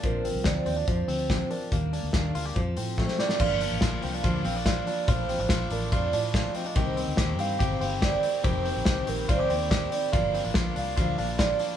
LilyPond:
<<
  \new Staff \with { instrumentName = "Soft synth lead" } { \time 4/4 \key g \minor \tempo 4 = 143 bes'4 d''4 c''4. bes'8~ | bes'4. r2 d''8~ | d''4 r8 f''4 f''8 d''4 | c''4. bes'8 d''4. ees''8~ |
ees''4 r8 f''4 f''8 d''4 | c''4. bes'8 d''4. d''8~ | d''4 r8 f''4 f''8 d''4 | }
  \new Staff \with { instrumentName = "Clean electric guitar" } { \time 4/4 \key g \minor f8 c'8 f8 c'16 d'16 f8 c'8 f8 d'8 | bes8 d'8 bes8 f'16 g'16 f8 c'8 a8 g'8 | <bes f'>8 d'8 f'8 c'16 d'16 f'8 c'16 d'16 f'8 d'8 | <f f'>8 c'16 d'16 f'8 d'8 f'8 d'8 f'8 c'16 d'16 |
<ees g'>8 c'8 g'8 c'8 g'8 c'8 g'8 c'8 | <ees g'>8 c'8 g'8 c'8 f'16 g'16 c'8 g'8 c'8 | <bes f'>8 c'16 d'16 f'8 d'8 f'8 d'8 f'8 d'8 | }
  \new Staff \with { instrumentName = "Steel-string acoustic guitar" } { \time 4/4 \key g \minor <bes, d f c' d'>8 <f c' d'>8 <bes, d f c' d'>8 <f c' d'>8 <d f c' d'>8 <f c' d'>8 <bes, d f c' d'>8 <f c' d'>8 | <ees g bes d'>8 <g bes d'>8 <ees g bes d'>8 <g bes d'>8 <g c' f' a'>8 <c' f' a'>8 <f g c' f' a'>8 <c' f' a'>8 | <g, d f bes d'>8 <f bes d'>8 <d f bes d'>8 <f bes d'>8 <g, d f bes d'>8 <f bes d'>8 <d f bes d'>8 <f bes d'>8 | <bes, f a d'>8 <f a d'>8 <bes, f a d'>8 <f a d'>8 <bes, f a d'>8 <f a d'>8 <bes, f a d'>8 <f a d'>8 |
<c ees bes c' g'>8 <bes c' g'>8 <ees bes c' g'>8 <bes c' g'>8 <c ees bes c' g'>8 <bes c' g'>8 <ees bes c' g'>8 <bes c' g'>8 | <f, c ees bes c' g'>8 <ees bes c' g'>8 <ees bes c' g'>8 <ees bes c' g'>8 <f, c ees bes c' g'>8 <ees bes c' g'>8 <ees bes c' g'>8 <ees bes c' g'>8 | <g, d f bes d'>8 <f bes d'>8 <d f bes d'>8 <f bes d'>8 <g, d f bes d'>8 <f bes d'>8 <d f bes d'>8 <f bes d'>8 | }
  \new Staff \with { instrumentName = "Fingered electric bass" } { \clef bass \time 4/4 \key g \minor bes,,8. c,16 d,8 ees,8 f,8 d,4 r8 | ees,8. d,16 ees,8 d,8 f,8 a,4 r8 | g,,8. a,,16 r8 c,8 d,8 bes,,4 r8 | bes,,8. a,,16 bes,,8 a,,8 f,8 a,4 r8 |
c,8. d,16 ees,8 g,8 g,,8 g,,4 r8 | f,,8. bes,,16 c,8 bes,,8 c,8 ees,4 r8 | g,,8. a,,16 bes,,8 c,8 d,8 bes,,4 r8 | }
  \new DrumStaff \with { instrumentName = "Drums" } \drummode { \time 4/4 <hh bd>8 hho8 <hh bd sn>8 hho8 <hh bd>8 hho8 <hh bd sn>8 hho8 | <hh bd>8 hho8 <hh bd sn>8 hho8 <hh bd>8 hho8 <bd sn>16 sn16 sn16 sn16 | <cymc bd>8 hho8 <hhp bd cymr sn>8 hho8 <hhp bd cymr>8 hho8 <hhp bd cymr sn>8 hho8 | <hhp bd cymr>8 hho8 <hhp bd cymr sn>8 hho8 <hhp bd cymr>8 hho8 <hhp bd cymr sn>8 hho8 |
<hhp bd cymr>8 hho8 <hhp bd cymr sn>8 hho8 <hhp bd cymr>8 hho8 <hhp bd cymr sn>8 hho8 | <hhp bd cymr>8 hho8 <hhp bd cymr sn>8 hho8 <hhp bd cymr>8 hho8 <hhp bd cymr sn>8 hho8 | <hhp bd cymr>8 hho8 <hhp bd cymr sn>8 hho8 <hhp bd cymr>8 hho8 <hhp bd cymr sn>8 hho8 | }
>>